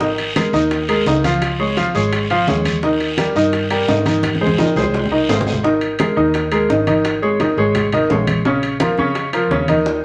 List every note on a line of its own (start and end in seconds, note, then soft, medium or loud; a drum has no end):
0.00 0.48 G#1 medium
0.00 0.29 D#3 medium
0.00 0.30 D#4 medium
0.00 0.30 D#5 medium
0.00 high bongo medium
0.00 high conga soft
0.00 long guiro medium
0.18 high bongo soft
0.18 high conga soft
0.18 high timbale medium
0.36 0.50 G#3 medium
0.36 0.51 G#4 medium
0.36 0.51 A#4 medium
0.36 high bongo medium
0.36 high conga medium
0.36 high timbale medium
0.36 short guiro medium
0.53 1.02 D#2 medium
0.53 0.82 D#3 medium
0.53 0.83 D#4 medium
0.53 0.83 D#5 medium
0.53 high bongo soft
0.53 high conga soft
0.53 short guiro medium
0.71 high bongo medium
0.71 high conga soft
0.71 high timbale medium
0.71 long guiro medium
0.89 1.03 G#3 medium
0.89 1.03 G#4 medium
0.89 1.04 A#4 medium
0.89 high conga soft
0.89 high timbale medium
1.06 1.88 C#2 medium
1.06 1.21 D#3 medium
1.06 1.21 D#4 medium
1.06 1.21 D#5 medium
1.06 high bongo soft
1.06 low bongo medium
1.06 high conga soft
1.06 low timbale medium
1.06 short guiro medium
1.24 1.53 F3 medium
1.24 1.53 F4 medium
1.24 1.54 F5 medium
1.24 high bongo soft
1.24 high conga medium
1.24 high timbale medium
1.24 short guiro medium
1.42 high bongo medium
1.42 high conga soft
1.42 high timbale medium
1.42 long guiro medium
1.59 1.74 G#3 medium
1.59 1.74 G#4 medium
1.59 1.74 C#5 medium
1.59 high bongo soft
1.59 high conga soft
1.77 1.91 F3 medium
1.77 1.92 F4 medium
1.77 1.92 F5 medium
1.77 high bongo medium
1.77 high conga medium
1.77 high timbale medium
1.77 short guiro medium
1.95 2.44 G#1 medium
1.95 2.24 G#3 medium
1.95 2.24 G#4 medium
1.95 2.24 C#5 medium
1.95 high bongo soft
1.95 high conga soft
1.95 short guiro medium
2.12 high bongo medium
2.12 high conga soft
2.12 high timbale medium
2.12 long guiro medium
2.30 2.45 F3 medium
2.30 2.45 F4 medium
2.30 2.45 F5 medium
2.30 high conga soft
2.30 high timbale medium
2.47 3.30 D#2 medium
2.47 2.76 G#3 medium
2.47 2.77 G#4 medium
2.47 2.77 C#5 medium
2.47 high bongo soft
2.47 low bongo medium
2.47 high conga medium
2.47 low timbale medium
2.47 short guiro medium
2.65 high bongo soft
2.65 high conga medium
2.65 high timbale medium
2.65 short guiro medium
2.83 3.12 D#3 medium
2.83 3.12 D#4 medium
2.83 3.12 D#5 medium
2.83 high bongo medium
2.83 high conga soft
2.83 long guiro medium
3.00 high bongo soft
3.00 high conga soft
3.00 high timbale medium
3.18 3.32 G3 medium
3.18 3.33 G4 medium
3.18 3.33 A#4 medium
3.18 high bongo medium
3.18 high conga medium
3.18 high timbale medium
3.18 short guiro medium
3.35 3.85 G2 medium
3.35 3.64 D#3 medium
3.35 3.65 D#4 medium
3.35 3.65 D#5 medium
3.35 high bongo soft
3.35 high conga soft
3.35 short guiro medium
3.52 high bongo medium
3.52 high conga soft
3.52 high timbale medium
3.52 long guiro medium
3.70 3.85 G3 medium
3.70 3.85 G4 medium
3.70 3.85 A#4 medium
3.70 high conga soft
3.70 high timbale medium
3.88 4.70 G#2 medium
3.88 4.03 D#3 medium
3.88 4.03 D#4 medium
3.88 4.03 D#5 medium
3.88 high bongo soft
3.88 low bongo medium
3.88 high conga soft
3.88 low timbale medium
3.88 short guiro medium
4.05 4.35 D#3 medium
4.05 4.35 D#4 medium
4.05 4.35 D#5 medium
4.05 high bongo soft
4.05 high conga medium
4.05 high timbale medium
4.05 short guiro medium
4.23 high bongo medium
4.23 high conga medium
4.23 high timbale medium
4.23 long guiro medium
4.35 high conga medium
4.41 4.55 G#3 medium
4.41 4.56 G#4 medium
4.41 4.56 C5 medium
4.41 high bongo soft
4.47 high conga loud
4.58 4.73 D#3 medium
4.58 4.73 D#4 medium
4.58 4.73 D#5 medium
4.58 high bongo medium
4.58 high conga medium
4.58 high timbale medium
4.58 short guiro medium
4.76 5.25 C2 medium
4.76 5.05 G#3 medium
4.76 5.05 G#4 medium
4.76 5.05 C5 medium
4.76 high bongo soft
4.76 high timbale medium
4.76 short guiro medium
4.82 low conga loud
4.94 high bongo medium
4.94 high timbale medium
4.94 long guiro medium
5.06 low conga medium
5.11 5.26 D#3 medium
5.11 5.26 D#4 medium
5.11 5.26 D#5 medium
5.29 6.11 G#1 medium
5.29 5.58 G#3 medium
5.29 5.58 G#4 medium
5.29 5.58 C5 medium
5.29 high bongo soft
5.29 low bongo medium
5.29 low timbale medium
5.29 short guiro medium
5.41 low conga medium
5.47 high bongo soft
5.47 low timbale medium
5.47 short guiro medium
5.53 low conga medium
5.63 5.93 D#3 medium
5.63 5.93 D#4 medium
5.63 5.93 D#5 medium
5.63 high bongo medium
5.63 high conga soft
5.81 high bongo soft
5.81 high conga soft
5.81 high timbale medium
5.99 6.14 G#3 medium
5.99 6.14 G#4 medium
5.99 6.14 A#4 medium
5.99 high bongo medium
5.99 high conga medium
5.99 high timbale medium
6.16 6.66 D#2 medium
6.16 6.45 D#3 medium
6.16 6.46 D#4 medium
6.16 6.46 D#5 medium
6.16 high bongo soft
6.16 high conga soft
6.34 high bongo medium
6.34 high conga soft
6.34 high timbale medium
6.52 6.66 G#3 medium
6.52 6.66 G#4 medium
6.52 6.67 A#4 medium
6.52 high conga soft
6.52 high timbale medium
6.69 7.52 G#1 medium
6.69 6.84 D#3 medium
6.69 6.84 D#4 medium
6.69 6.84 D#5 medium
6.69 high bongo soft
6.69 low bongo medium
6.69 high conga soft
6.87 7.16 D#3 medium
6.87 7.16 D#4 medium
6.87 7.16 D#5 medium
6.87 high bongo soft
6.87 high conga medium
6.87 high timbale medium
7.05 high bongo medium
7.05 high conga soft
7.05 high timbale medium
7.22 7.37 G#3 medium
7.22 7.37 G#4 medium
7.22 7.37 C#5 medium
7.22 high bongo soft
7.22 high conga soft
7.40 7.55 D#3 medium
7.40 7.55 D#4 medium
7.40 7.55 D#5 medium
7.40 high bongo medium
7.40 high conga medium
7.40 high timbale medium
7.57 8.06 G#1 medium
7.57 7.87 G#3 medium
7.57 7.87 G#4 medium
7.57 7.87 C#5 medium
7.57 high bongo soft
7.57 high conga soft
7.75 high bongo medium
7.75 high conga soft
7.75 low conga medium
7.75 high timbale medium
7.92 8.07 D#3 medium
7.92 8.08 D#4 medium
7.92 8.08 D#5 medium
7.92 high conga soft
7.92 low conga medium
7.92 high timbale medium
8.10 8.93 A#1 medium
8.10 8.39 G#3 medium
8.10 8.39 G#4 medium
8.10 8.39 C#5 medium
8.10 high bongo soft
8.10 low bongo medium
8.10 high conga medium
8.10 low timbale medium
8.27 high bongo soft
8.27 high conga medium
8.27 high timbale medium
8.45 8.74 C#3 medium
8.45 8.75 C#4 medium
8.45 8.75 C#5 medium
8.45 high bongo medium
8.45 high conga soft
8.62 high bongo soft
8.62 high conga soft
8.62 high timbale medium
8.80 8.95 F3 medium
8.80 8.95 F4 medium
8.80 8.95 A#4 medium
8.80 high bongo medium
8.80 high conga medium
8.80 high timbale medium
8.98 9.47 F2 loud
8.98 9.27 C#3 medium
8.98 9.27 C#4 medium
8.98 9.27 C#5 medium
8.98 high bongo soft
8.98 high conga soft
9.15 high bongo medium
9.15 high conga soft
9.15 high timbale medium
9.33 9.48 F3 medium
9.33 9.48 F4 medium
9.33 9.48 A#4 medium
9.33 high conga soft
9.33 high timbale medium
9.51 10.05 D#2 medium
9.51 9.65 C#3 medium
9.51 9.65 C#4 medium
9.51 9.66 C#5 medium
9.51 high bongo soft
9.51 low bongo medium
9.51 high conga soft
9.68 9.97 D#3 medium
9.68 9.97 D#4 medium
9.68 9.98 D#5 medium
9.68 high bongo soft
9.68 high conga medium
9.68 high timbale medium
9.86 high bongo medium
9.86 high conga soft
9.86 high timbale medium